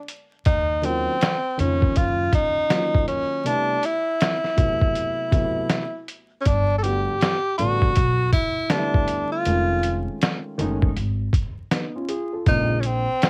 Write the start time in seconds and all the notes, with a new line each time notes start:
0.09 closed hi-hat
0.46 D#2 D#4, kick, closed hi-hat
0.82 D#3 F#3 A#3 C4 C#4 F4, closed hi-hat
1.21 snare, closed hi-hat
1.57 F2 C#3 D#3 A#3 C#4 F4, closed hi-hat
1.82 kick
1.96 F#2 F4, kick, closed hi-hat
2.33 D#4, kick, closed hi-hat
2.70 D#3 F#3 A#3 C#4 F4, snare, closed hi-hat
2.94 kick
3.08 C#4, closed hi-hat
3.44 C3 G3 A3 B3 D4 E4, closed hi-hat
3.83 E4, closed hi-hat
4.21 snare, closed hi-hat
4.44 snare
4.57 C3 F#3 A3 B3 E4, kick, closed hi-hat
4.81 kick
4.95 closed hi-hat
5.31 C3 F#3 A3 B3 E4, kick, closed hi-hat
5.70 snare, closed hi-hat
6.08 closed hi-hat
6.41 C#4
6.45 G1 D4, kick, closed hi-hat
6.78 A4
6.83 D3 G3 A3 B3 F#4 G4, closed hi-hat
7.21 snare, closed hi-hat
7.58 A1 D3 G3 A3 B3 D4 F#4, closed hi-hat
7.82 kick
7.96 B1, kick, closed hi-hat
8.33 E4, kick, closed hi-hat
8.70 D3 G3 A3 B3 D4, snare, closed hi-hat
8.78 E4
8.94 kick
9.08 closed hi-hat
9.32 F4
9.45 F1 D#3 G#3 A3 C#4 F4, closed hi-hat
9.83 closed hi-hat
10.22 snare, closed hi-hat
10.58 F#1 D#3 G#3 A3 C#4 D#4, closed hi-hat
10.82 kick
10.97 G#1, closed hi-hat
11.33 kick, closed hi-hat
11.71 B3 D#4, snare, closed hi-hat
11.96 C#4 F4
12.09 F4 G#4, closed hi-hat
12.33 F4 A4
12.46 A#1 C#3 G#3 A#3 C4 D#4 F4, kick, closed hi-hat
12.80 C#4, closed hi-hat
12.86 C4
13.22 snare, closed hi-hat